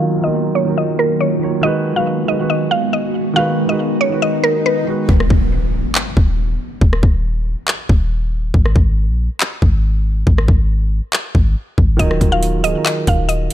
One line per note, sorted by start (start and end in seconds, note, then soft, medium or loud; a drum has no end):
0.00 0.21 D#3 loud
0.00 5.05 D#3 medium
0.00 0.23 F#3 medium
0.00 1.60 F#3 medium
0.00 1.60 A#3 medium
0.00 0.25 F4 medium
0.00 1.60 F4 medium
0.00 1.65 G#4 medium
0.00 0.26 A#4 loud
0.00 0.22 F5 loud
0.21 0.52 D#3 medium
0.21 0.53 F#3 medium
0.21 0.54 F4 medium
0.21 0.54 D#5 medium
0.26 0.54 A#4 medium
0.55 0.75 C#5 medium
0.65 1.17 D#3 medium
0.65 1.18 F#3 medium
0.65 1.19 F4 medium
0.70 1.20 A#4 medium
0.78 0.97 D#5 medium
0.99 1.19 A#4 medium
1.21 1.61 C#5 medium
1.39 1.56 D#3 medium
1.39 1.57 F#3 medium
1.39 1.58 F4 medium
1.44 1.58 C#5 medium
1.61 1.85 D#3 loud
1.61 1.86 G#3 medium
1.61 5.05 G#3 medium
1.61 5.05 B3 medium
1.61 5.05 F#4 medium
1.61 1.86 F#4 medium
1.61 1.94 D#5 loud
1.66 1.87 B4 loud
1.94 2.17 D#3 medium
1.94 2.18 G#3 medium
1.94 2.19 F#4 medium
1.94 2.26 F5 medium
1.99 2.20 B4 medium
2.26 2.35 D#3 medium
2.26 2.36 G#3 medium
2.26 2.36 F#4 medium
2.26 2.48 D#5 medium
2.30 2.37 B4 medium
2.37 2.98 D#3 medium
2.37 2.98 G#3 medium
2.37 2.99 F#4 medium
2.42 3.00 B4 medium
2.50 2.70 D#5 medium
2.71 2.91 F5 medium
2.93 3.34 D#5 medium
3.33 3.57 D#3 loud
3.33 3.58 G#3 medium
3.33 3.59 F#4 medium
3.33 3.67 F5 loud
3.33 swell medium
3.38 3.60 B4 loud
3.67 3.97 D#3 medium
3.67 3.98 G#3 medium
3.67 3.99 F#4 medium
3.67 3.99 D#5 medium
3.72 4.00 B4 medium
4.01 4.21 C#5 medium
4.09 4.62 D#3 medium
4.09 4.63 G#3 medium
4.09 4.64 F#4 medium
4.14 4.65 B4 medium
4.22 4.42 D#5 medium
4.44 4.64 A#4 medium
4.66 5.06 B4 medium
4.85 5.01 D#3 medium
4.85 5.02 G#3 medium
4.85 5.03 F#4 medium
4.90 5.04 B4 medium
5.09 5.30 D#1 loud
5.09 kick loud
5.09 impact medium
5.20 cross-stick loud
5.30 5.75 D#1 loud
5.30 kick medium
5.74 5.84 C#1 loud
5.95 clap loud
6.17 6.58 D#1 loud
6.17 kick medium
6.81 7.02 D#1 loud
6.81 kick loud
6.93 cross-stick medium
7.03 7.55 D#1 loud
7.03 kick loud
7.68 clap loud
7.89 8.52 D#1 loud
7.89 kick medium
8.54 8.75 G#1 loud
8.54 kick loud
8.66 cross-stick medium
8.76 9.10 G#1 loud
8.76 kick loud
9.09 9.29 A#1 loud
9.41 clap loud
9.62 10.24 G#1 loud
9.62 kick medium
10.27 10.48 G#1 loud
10.27 kick loud
10.38 cross-stick loud
10.48 11.01 G#1 loud
10.48 kick medium
11.13 clap loud
11.35 11.55 G#1 loud
11.35 kick medium
11.78 11.99 G#1 loud
11.78 kick medium
11.97 12.20 D#1 loud
11.97 12.20 D#3 medium
11.97 12.21 F#3 loud
11.97 12.22 F4 medium
11.97 12.30 D#5 loud
11.97 kick loud
11.97 closed hi-hat medium
12.02 12.23 A#4 loud
12.11 cross-stick loud
12.21 12.66 D#1 loud
12.21 kick medium
12.21 closed hi-hat medium
12.29 12.53 D#3 medium
12.29 12.54 F#3 medium
12.29 12.55 F4 medium
12.29 12.62 F5 medium
12.34 12.56 A#4 medium
12.43 closed hi-hat medium
12.61 12.75 C#1 loud
12.61 12.71 D#3 medium
12.61 12.71 F#3 medium
12.61 12.72 F4 medium
12.61 12.84 D#5 medium
12.61 closed hi-hat medium
12.66 12.73 G#4 medium
12.73 13.33 D#3 medium
12.73 13.34 F#3 medium
12.73 13.35 F4 medium
12.78 13.36 A#4 medium
12.85 13.05 D#5 medium
12.85 clap loud
12.85 closed hi-hat medium
13.07 13.49 D#1 loud
13.07 13.28 F5 medium
13.07 kick medium
13.07 closed hi-hat medium
13.29 13.53 D#5 medium
13.29 closed hi-hat medium